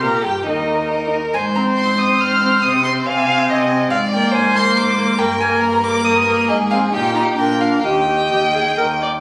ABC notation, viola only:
X:1
M:3/4
L:1/8
Q:1/4=139
K:Eb
V:1 name="Viola"
B G E3 z | z C2 C2 C | C C2 C2 C | z B,2 B,2 B, |
B, B,2 B,2 B, | z C E E D D | G G G A B d |]